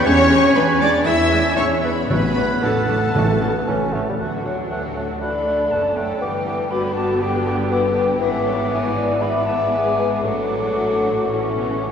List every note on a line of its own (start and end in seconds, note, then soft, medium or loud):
0.04 0.50 E2 loud
0.04 0.13 G#3 loud
0.04 0.56 C#4 loud
0.04 0.13 D4 medium
0.04 0.55 C#5 loud
0.04 0.34 C#5 loud
0.04 1.04 G#5 loud
0.04 0.54 C#6 loud
0.30 0.38 G#3 medium
0.30 0.38 D4 medium
0.55 1.00 E2 medium
0.55 0.64 G#3 medium
0.55 0.80 B3 medium
0.55 0.64 B3 medium
0.55 0.64 D4 medium
0.55 0.63 B4 medium
0.55 0.83 B4 loud
0.55 0.81 B5 loud
0.80 0.89 G#3 medium
0.80 1.06 D4 loud
0.80 0.89 D4 medium
0.80 1.06 D5 loud
0.80 1.07 D5 loud
0.80 0.89 D6 loud
1.06 1.51 E2 loud
1.06 1.14 G#3 medium
1.06 1.14 D4 medium
1.06 1.57 E4 loud
1.06 1.56 E4 loud
1.06 1.59 E5 loud
1.06 1.56 E5 loud
1.06 1.56 G#5 loud
1.06 1.56 E6 loud
1.31 1.40 G#3 medium
1.31 1.40 D4 medium
1.56 2.03 E2 medium
1.56 1.65 G#3 medium
1.56 1.82 C#4 loud
1.56 1.83 C#4 loud
1.56 1.65 D4 medium
1.56 1.65 C#5 loud
1.56 1.83 C#5 medium
1.56 1.91 E5 medium
1.56 1.65 C#6 loud
1.83 1.91 G#3 medium
1.83 2.08 B3 medium
1.83 1.91 D4 medium
1.83 1.91 B4 medium
1.83 1.90 B4 medium
1.83 2.08 B5 medium
2.09 2.57 A1 medium
2.09 2.85 A2 loud
2.09 2.17 F#3 medium
2.09 2.62 B3 loud
2.09 2.17 D4 medium
2.09 2.61 B4 loud
2.09 2.64 B4 loud
2.09 3.90 F#5 medium
2.09 2.61 B5 loud
2.36 2.44 F#3 medium
2.36 2.44 D4 medium
2.62 3.09 A1 medium
2.62 2.71 F#3 medium
2.62 3.94 A3 medium
2.62 3.17 B3 medium
2.62 2.70 D4 medium
2.62 3.91 A4 medium
2.62 3.94 A4 medium
2.62 3.94 A5 medium
2.88 2.96 F#3 medium
2.88 2.96 D4 medium
3.15 3.62 A1 medium
3.15 3.90 A2 loud
3.15 3.23 E3 medium
3.15 3.41 A3 medium
3.15 3.23 C#4 medium
3.41 3.49 E3 medium
3.41 3.69 B3 medium
3.41 3.50 C#4 medium
3.68 4.14 A1 medium
3.68 3.76 E3 medium
3.68 3.95 C#4 medium
3.68 3.76 C#4 medium
3.94 4.03 E3 medium
3.94 4.07 A3 medium
3.94 4.03 C#4 medium
4.09 4.14 G3 medium
4.19 5.68 D2 medium
4.19 4.68 D3 soft
4.19 4.68 F#3 soft
4.19 4.32 A3 soft
4.19 5.17 D4 soft
4.19 4.44 F#4 medium
4.19 4.68 F#4 soft
4.19 4.31 A4 medium
4.19 5.17 F#5 medium
4.19 4.32 F#5 soft
4.45 4.57 A3 soft
4.45 4.53 A4 medium
4.45 4.70 C#5 medium
4.45 4.57 F#5 soft
4.69 5.22 F#3 soft
4.69 4.83 A3 soft
4.69 5.21 A3 soft
4.69 5.20 F#4 soft
4.69 4.95 G4 medium
4.69 4.81 B4 medium
4.69 4.82 F#5 soft
4.94 5.08 A3 soft
4.94 5.19 A4 medium
4.94 5.06 C#5 medium
4.94 5.07 F#5 soft
5.20 5.47 E3 medium
5.20 5.33 A3 soft
5.20 5.71 A3 medium
5.20 5.71 D4 soft
5.20 5.94 A4 medium
5.20 5.71 A4 soft
5.20 5.94 D5 medium
5.20 5.32 F#5 medium
5.20 5.73 B5 medium
5.46 5.70 D3 medium
5.46 5.58 A3 medium
5.46 5.58 F#5 soft
5.71 6.21 F#1 medium
5.71 6.21 F#2 medium
5.71 6.21 D3 medium
5.71 5.83 A3 soft
5.71 5.97 B3 medium
5.71 6.22 C#4 medium
5.71 6.21 A4 medium
5.71 5.83 F#5 medium
5.71 5.97 A5 medium
5.96 6.21 A3 medium
5.96 6.08 A3 medium
5.96 6.21 A4 medium
5.96 6.13 C#5 medium
5.96 6.07 F#5 soft
5.96 6.72 G5 medium
6.14 6.21 C#5 medium
6.20 8.17 G1 medium
6.20 8.17 G2 medium
6.20 6.72 E3 medium
6.20 6.72 G3 medium
6.20 7.21 B3 medium
6.20 6.33 B3 medium
6.20 6.71 G4 medium
6.20 8.21 G4 medium
6.20 6.72 B4 medium
6.20 6.33 D6 medium
6.47 6.58 B3 medium
6.47 6.58 D6 medium
6.70 6.95 D3 medium
6.70 8.20 B3 medium
6.70 6.83 B3 medium
6.70 7.20 D4 medium
6.70 7.20 F#4 medium
6.70 6.95 B5 medium
6.70 6.83 D6 medium
6.95 8.18 D3 medium
6.95 7.08 B3 medium
6.95 7.22 A5 medium
6.95 7.08 D6 medium
7.21 7.33 B3 medium
7.21 7.71 D4 medium
7.21 7.29 D4 medium
7.21 7.46 G4 medium
7.21 8.20 G5 medium
7.21 7.33 D6 medium
7.45 7.57 B3 medium
7.45 7.54 F#4 medium
7.45 7.57 A4 medium
7.45 7.58 D6 medium
7.70 7.82 B3 medium
7.70 7.79 E4 medium
7.70 8.20 G4 medium
7.70 8.18 B4 medium
7.70 7.83 D6 medium
7.95 8.07 B3 medium
7.95 8.03 D4 medium
7.95 8.08 D6 medium
8.19 10.19 G#1 medium
8.19 10.19 G#2 medium
8.19 9.72 E3 medium
8.19 9.19 B3 medium
8.19 9.17 B3 medium
8.19 8.70 C#4 medium
8.19 9.19 E4 medium
8.19 8.46 G#4 medium
8.19 8.31 B4 loud
8.19 8.70 E5 medium
8.19 9.18 D6 medium
8.45 8.71 A4 medium
8.45 8.57 C#5 medium
8.70 10.20 B3 medium
8.70 8.96 C#5 medium
8.70 8.82 E5 medium
8.70 9.23 G#5 medium
8.96 9.19 B4 medium
8.96 9.21 D5 medium
9.20 10.22 B3 medium
9.20 9.28 G#4 medium
9.20 9.95 B4 medium
9.20 9.98 E5 medium
9.20 9.47 B5 medium
9.20 10.22 D6 medium
9.46 10.22 G#4 medium
9.46 9.71 A5 medium
9.72 9.96 G#3 medium
9.72 10.23 G#5 medium
9.97 10.23 G#3 medium
9.97 10.23 G#4 medium
9.97 10.24 B4 medium
10.23 11.26 A1 medium
10.23 10.69 A2 medium
10.23 11.29 F#3 medium
10.23 11.28 F#3 medium
10.23 11.28 A3 medium
10.23 11.28 D4 medium
10.23 11.28 F#4 medium
10.23 11.92 F#4 medium
10.23 11.92 A4 medium
10.23 11.92 F#5 medium
10.23 11.30 D6 medium
10.75 11.50 A2 medium
11.28 11.92 A1 medium
11.28 11.92 E3 medium
11.28 11.92 C#4 medium
11.28 11.92 A4 medium
11.28 11.92 C#6 medium
11.53 11.79 B2 medium
11.80 11.92 C#3 medium